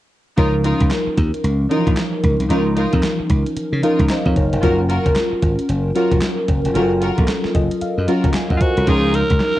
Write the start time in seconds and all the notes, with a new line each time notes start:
0.37 C#2 F3 C#4 D#4 F4 A#4, kick, closed hi-hat
0.64 D#4 F4 A#4, closed hi-hat
0.80 C#2, kick, closed hi-hat
0.91 snare, clap, closed hi-hat
1.07 muted slap bass stroke
1.17 D#2, kick, closed hi-hat
1.34 closed hi-hat
1.44 C#2, closed hi-hat
1.70 E3 C#4 D#4 F4 A#4, closed hi-hat
1.77 F3
1.87 A#1, kick, closed hi-hat
1.97 snare, clap, closed hi-hat
2.24 C#2, kick, closed hi-hat
2.40 C2, closed hi-hat
2.50 C#2 F3 C#4 D#4 F4 A#4, closed hi-hat
2.77 D#4 F4 A#4, closed hi-hat
2.93 F2, kick, closed hi-hat
3.03 snare, clap, closed hi-hat
3.20 muted slap bass stroke
3.30 C#2, kick, closed hi-hat
3.46 closed hi-hat
3.56 muted slap bass stroke, closed hi-hat
3.73 C#3
3.83 F3 C#4 D#4 F4 A#4 F5, closed hi-hat
3.99 C#2, kick, closed hi-hat
4.09 C5 D#5 A#5, snare, clap, closed hi-hat
4.26 F2 C#5 F5, kick
4.36 F#1 A#4 C#5, kick, closed hi-hat
4.53 F1 A#4, closed hi-hat
4.62 F#1 F#3 C#4 F4 F#4 A#4, kick, closed hi-hat
4.89 F4 F#4 A#4, closed hi-hat
5.06 F#1, kick, closed hi-hat
5.15 snare, clap, closed hi-hat
5.32 muted slap bass stroke
5.42 G#1, kick, closed hi-hat
5.59 closed hi-hat
5.69 F#1, closed hi-hat
5.95 F#3 C#4 F4 F#4 A#4, closed hi-hat
6.12 F1, kick, closed hi-hat
6.21 snare, clap, closed hi-hat
6.48 F#1, kick, closed hi-hat
6.65 F1, closed hi-hat
6.75 F#1 F#3 C#4 F4 F#4 A4 A#4, closed hi-hat
6.82 A#4
7.01 F4 F#4 A#4, closed hi-hat
7.18 A#1, kick, closed hi-hat
7.28 snare, clap, closed hi-hat
7.44 muted slap bass stroke, snare
7.55 F#1 D#5, kick, closed hi-hat
7.71 closed hi-hat
7.81 F5, muted slap bass stroke, closed hi-hat
7.98 F#2
8.08 F#3 C#4 F4 F#4 A#4, closed hi-hat
8.24 F#1, kick, closed hi-hat
8.34 G#5, snare, clap, closed hi-hat
8.50 F#2 D#5 F#5, kick
8.57 F4, closed hi-hat
8.61 F#4 C5 D#5 A#5, kick
8.77 C2 A#4 C#5, closed hi-hat
8.87 C#2 F3 C#4 D#4 F4 G#4 A#4, kick, closed hi-hat
9.14 A#4, closed hi-hat
9.30 C#2, kick, closed hi-hat
9.40 snare, clap, closed hi-hat
9.56 D#4